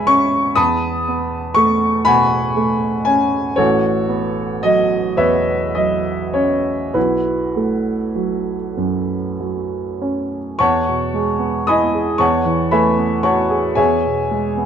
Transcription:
0.00 0.54 E2 medium
0.00 0.59 B2 soft
0.00 0.60 G#3 soft
0.00 0.60 B3 soft
0.00 0.59 C#5 medium
0.00 0.60 E5 medium
0.00 0.59 G#5 medium
0.00 0.56 B5 medium
0.07 0.57 C#4 soft
0.07 0.57 C#6 medium
0.55 3.54 E2 medium
0.55 1.52 A5 medium
0.55 1.52 B5 medium
0.55 1.56 D#6 medium
1.08 1.87 B3 soft
1.54 2.37 A3 soft
1.54 2.06 C#6 medium
2.05 2.87 B2 medium
2.05 3.03 F#5 medium
2.05 3.03 G#5 medium
2.05 3.06 B5 loud
2.57 3.38 A3 soft
3.05 3.58 C#4 soft
3.05 3.57 G#5 medium
3.56 6.91 A1 medium
3.56 4.60 F#4 medium
3.56 4.59 A4 medium
3.56 4.63 C#5 medium
4.09 4.96 B3 soft
4.63 5.53 F#3 soft
4.63 5.19 D#5 medium
5.17 6.11 E2 soft
5.17 5.72 B4 medium
5.17 5.71 C#5 medium
5.17 5.76 E5 medium
5.75 6.71 F#3 soft
5.75 6.34 D#5 medium
6.34 6.95 C#4 soft
6.34 6.95 C#5 medium
6.94 10.56 B1 soft
6.94 8.74 E4 soft
6.94 8.74 F#4 soft
6.94 8.78 B4 medium
7.56 8.55 A3 soft
8.15 9.14 F#3 soft
8.77 9.76 F#2 soft
9.40 10.38 F#3 soft
10.02 10.60 C#4 soft
10.59 12.16 E2 medium
10.59 11.64 C#5 medium
10.59 11.64 F#5 medium
10.59 11.64 A5 medium
10.59 11.67 C#6 medium
10.88 11.31 B2 soft
11.14 11.57 G#3 soft
11.39 11.83 B3 soft
11.67 12.10 E4 soft
11.67 12.17 D#5 medium
11.67 12.17 G#5 medium
11.67 12.17 B5 medium
11.67 12.20 D#6 medium
11.94 12.20 G#4 soft
12.18 13.73 E2 medium
12.18 12.69 C#5 medium
12.18 12.69 F#5 medium
12.18 12.68 A5 medium
12.18 12.71 C#6 medium
12.46 12.88 E3 soft
12.71 13.14 A3 soft
12.71 13.21 B4 medium
12.71 13.21 E5 medium
12.71 13.21 G#5 medium
12.71 13.24 B5 medium
12.98 13.41 B3 soft
13.23 13.67 F#4 soft
13.23 13.73 C#5 medium
13.23 13.73 F#5 medium
13.23 13.74 A5 medium
13.23 13.77 C#6 medium
13.50 13.76 G#4 soft
13.75 14.66 E2 soft
13.75 14.66 G#4 medium
13.75 14.66 C#5 medium
13.75 14.66 E5 medium
13.75 14.66 G#5 medium
14.05 14.47 B2 soft
14.31 14.66 G#3 soft
14.57 14.66 B3 soft

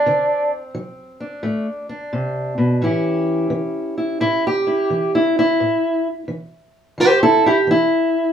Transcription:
0.00 0.50 D4 medium
0.06 0.70 D3 medium
0.06 1.42 C4 medium
0.75 1.39 F#3 medium
1.20 1.88 D4 soft
1.43 2.08 A2 medium
1.43 1.66 A3 soft
1.89 2.79 D4 soft
2.13 2.57 C3 medium
2.58 2.81 B2 medium
2.81 3.46 A2 medium
2.81 3.50 E3 soft
2.81 5.57 C#4 soft
2.81 3.97 E4 soft
2.81 4.45 G4 soft
3.50 4.15 E3 medium
3.98 4.20 E4 soft
4.20 4.85 A2 medium
4.20 4.44 E4 loud
4.47 5.15 G4 medium
4.67 5.15 E4 soft
4.90 5.55 E3 medium
5.15 5.37 E4 medium
5.39 6.07 E4 medium
5.60 6.24 A2 medium
6.28 6.93 E3 medium
6.98 7.63 E3 medium
6.98 7.22 G4 medium
6.98 7.22 C5 loud
7.23 7.45 E4 medium
7.23 7.45 A4 loud
7.46 7.57 E4 medium
7.46 7.69 G4 medium
7.67 8.32 E3 medium
7.67 8.33 E4 loud

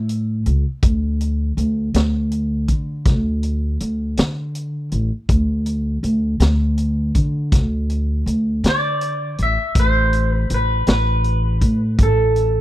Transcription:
0.00 0.42 A2 medium
0.09 closed hi-hat medium
0.46 0.63 C#2 medium
0.46 closed hi-hat soft
0.83 1.53 D2 medium
0.83 kick medium
0.83 closed hi-hat medium
1.21 closed hi-hat medium
1.57 1.91 D2 medium
1.57 closed hi-hat medium
1.94 2.65 D2 medium
1.94 snare medium
1.94 closed hi-hat medium
2.31 closed hi-hat medium
2.68 3.07 D3 medium
2.68 kick medium
2.68 closed hi-hat soft
3.05 3.76 D2 medium
3.05 kick medium
3.05 snare soft
3.05 closed hi-hat medium
3.43 closed hi-hat soft
3.80 4.15 D2 medium
3.80 closed hi-hat soft
4.17 4.88 D3 medium
4.17 snare medium
4.17 closed hi-hat medium
4.55 closed hi-hat medium
4.92 5.09 A1 medium
4.92 closed hi-hat soft
5.29 5.99 D2 medium
5.29 kick medium
5.29 closed hi-hat medium
5.66 closed hi-hat medium
6.03 6.37 D2 medium
6.03 closed hi-hat soft
6.40 7.11 D2 medium
6.40 snare medium
6.40 closed hi-hat medium
6.77 closed hi-hat medium
7.15 7.54 D3 medium
7.15 kick medium
7.15 closed hi-hat soft
7.52 8.23 D2 medium
7.52 kick loud
7.52 snare soft
7.52 closed hi-hat medium
7.90 closed hi-hat medium
8.26 8.61 D2 medium
8.26 closed hi-hat medium
8.64 9.34 D3 medium
8.64 snare medium
8.64 closed hi-hat medium
8.69 9.42 D5 medium
9.01 closed hi-hat medium
9.38 9.56 A1 medium
9.38 closed hi-hat soft
9.43 9.79 E5 medium
9.75 10.46 A1 medium
9.75 kick medium
9.75 closed hi-hat medium
9.80 10.32 C5 medium
10.13 closed hi-hat medium
10.32 10.54 B4 medium
10.50 10.84 A1 medium
10.50 closed hi-hat medium
10.54 10.90 B4 medium
10.87 11.58 A1 medium
10.87 snare medium
10.87 closed hi-hat medium
10.91 12.04 B4 medium
11.24 closed hi-hat soft
11.61 12.00 A2 medium
11.61 kick medium
11.61 closed hi-hat soft
11.98 12.61 A1 medium
11.98 kick loud
11.98 closed hi-hat medium
12.03 12.61 A4 medium
12.36 closed hi-hat soft

